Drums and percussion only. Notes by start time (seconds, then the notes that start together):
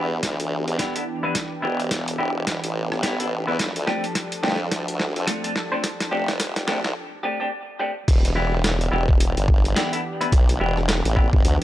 0.23 kick, snare, closed hi-hat
0.40 closed hi-hat
0.68 closed hi-hat
0.79 kick, snare, closed hi-hat
0.96 closed hi-hat
1.35 kick, snare, closed hi-hat
1.80 closed hi-hat
1.91 kick, snare, closed hi-hat
2.08 closed hi-hat
2.47 kick, snare, closed hi-hat
2.64 closed hi-hat
2.92 cross-stick
3.03 kick, snare, closed hi-hat
3.20 closed hi-hat
3.59 kick, snare, closed hi-hat
3.76 closed hi-hat
3.87 snare
4.04 closed hi-hat
4.15 kick, snare, closed hi-hat
4.32 closed hi-hat
4.43 snare
4.48 snare
4.52 snare
4.56 snare
4.71 kick, snare, closed hi-hat
4.88 closed hi-hat
5.00 snare
5.16 closed hi-hat
5.28 kick, snare, closed hi-hat
5.44 closed hi-hat
5.56 snare
5.84 kick, snare, closed hi-hat
6.00 snare, closed hi-hat
6.28 snare, closed hi-hat
6.40 kick, snare, closed hi-hat
6.56 snare, closed hi-hat
6.68 snare
6.84 snare
8.08 kick, closed hi-hat, crash
8.25 closed hi-hat
8.64 snare, closed hi-hat
8.81 closed hi-hat
9.09 kick
9.20 closed hi-hat
9.37 closed hi-hat
9.48 kick
9.65 closed hi-hat
9.76 snare, closed hi-hat
9.93 closed hi-hat
10.21 closed hi-hat
10.32 kick, closed hi-hat
10.49 closed hi-hat
10.77 cross-stick
10.89 snare, closed hi-hat
11.05 closed hi-hat
11.16 kick
11.33 kick
11.45 closed hi-hat